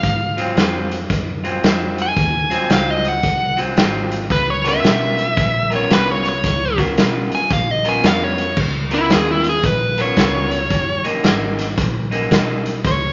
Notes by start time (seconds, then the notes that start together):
Already playing: F5
0.03 G#2, kick, closed hi-hat
0.37 G#2 F#3 C4 F4, closed hi-hat
0.56 F2 G#2 F#3 C4 F4, snare, closed hi-hat
0.91 closed hi-hat
1.10 F#2, kick, snare, closed hi-hat
1.44 G#2 F#3 C4 F4, closed hi-hat
1.63 F2 G#2 F#3 C4 F4, snare, closed hi-hat
1.98 G#5, closed hi-hat
2.17 D#2, kick, closed hi-hat
2.50 G#2 F#3 C4 F4, muted fingered electric bass stroke, closed hi-hat
2.70 C#2 F#3 C4 F4 F5, snare, closed hi-hat
2.91 D#5
3.05 F#5, closed hi-hat
3.23 C2, kick, closed hi-hat
3.57 G#2 F#3 C4 F4, closed hi-hat
3.76 G#1 G#2 F#3 C4 F4, snare, closed hi-hat
4.11 closed hi-hat
4.30 C#2 B4, kick, snare, closed hi-hat
4.50 C#5
4.64 C#3 B3 F4 A#4, snare, closed hi-hat
4.69 E5
4.83 B1 C#3 B3 F4 A#4, snare, closed hi-hat
5.18 closed hi-hat
5.37 A#1, kick, closed hi-hat
5.70 C#3 B3 F4 A#4, closed hi-hat
5.76 C#5
5.89 C2 C#3 B3 F4 A#4 B4, snare, closed hi-hat
6.11 C#5
6.25 C#5, closed hi-hat
6.44 C#2, kick, snare, closed hi-hat
6.77 C#3 B3 F4 A#4, kick, snare, closed hi-hat
6.97 B1 C#3 B3 F4 A#4, snare, closed hi-hat
7.31 G#5, muted fingered electric bass stroke, closed hi-hat
7.50 A#1 F5, kick, closed hi-hat
7.71 D#5
7.85 C#3 B3 F4 A#4, closed hi-hat
7.89 G#5
8.03 F2 C#3 B3 F4 A#4 F5, snare, closed hi-hat
8.24 C#5
8.38 closed hi-hat
8.57 C#2, kick, crash
8.91 C#3 B3 E4 F4 A#4, closed hi-hat
9.09 D#2 C#3 B3 F4 G#4 A#4, snare, closed hi-hat
9.31 E4
9.44 closed hi-hat
9.49 G#4
9.63 A#1 B4, kick, closed hi-hat
9.98 C#3 B3 F4 A#4 C#5, closed hi-hat
10.16 C#2 C#3 B3 F4 A#4, kick, snare, closed hi-hat
10.51 closed hi-hat
10.70 F#1, kick, closed hi-hat
11.04 F#2 E3 A#3 D#4, muted fingered electric bass stroke, closed hi-hat
11.24 G#1 F#2 E3 A#3 D#4, snare, closed hi-hat
11.59 snare, closed hi-hat
11.77 A#1, kick, closed hi-hat
12.11 F#2 E3 A#3 D#4, closed hi-hat
12.30 B1 F#2 E3 A#3 D#4, kick, snare, closed hi-hat
12.66 closed hi-hat
12.84 C#2 C#5, kick, closed hi-hat